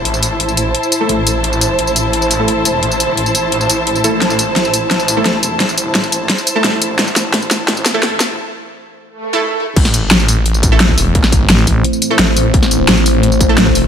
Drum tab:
CC |----------------|----------------|----------------|----------------|
HH |x-x-x-x-x-x-x-x-|x-x-x-x-x-x-x-x-|x-x-x-x-x-x-x-x-|x-x-x-x-x-x-x-x-|
TB |-xx--xx--xx---x-|-xx--xx--xx---x-|-xx--xx--xx--xx-|-xx--xx--xx---x-|
SD |----------------|----------------|----------------|o---o---o---o---|
BD |----------------|----------------|----------------|----------------|

CC |----------------|----------------|----------------|x---------------|
HH |x-x-x-x-x-x-x-x-|x-x-x-x-x-x-x-x-|----------------|x-x-x-o-x-x-x-o-|
TB |-xx--xx--xx---x-|-xx--xx--xx---x-|----------------|-xx--xx--xx---x-|
SD |o---o---o---o---|o-o-o-o-o-o-o-o-|----------------|-o--o-------o---|
BD |----------------|----------------|----------------|o---------o--o--|

CC |----------------|----------------|
HH |x-x-x-o-x-x-x-o-|x-x-x-o-x-x-x-o-|
TB |-xx--xx--xx---x-|-xx--xx--xx---x-|
SD |-o--o-------o---|-o--o-------o---|
BD |o-o---o---------|o---------o--o--|